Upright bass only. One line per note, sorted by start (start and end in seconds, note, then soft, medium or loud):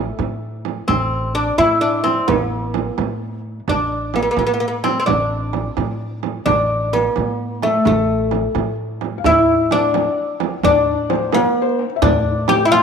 0.00 0.10 A1 medium
0.19 0.79 A2 medium
0.89 1.49 A1 medium
1.59 2.19 A2 medium
2.28 2.88 A1 medium
2.98 3.58 A2 medium
3.68 4.28 A1 medium
4.37 4.97 A2 medium
5.08 5.68 A1 medium
5.77 6.37 A2 medium
6.47 7.07 A1 medium
7.17 7.77 A2 medium
7.86 8.46 A1 medium
8.55 9.16 A2 medium
9.25 10.05 A2 medium
10.64 11.44 A2 medium
12.02 12.83 A2 loud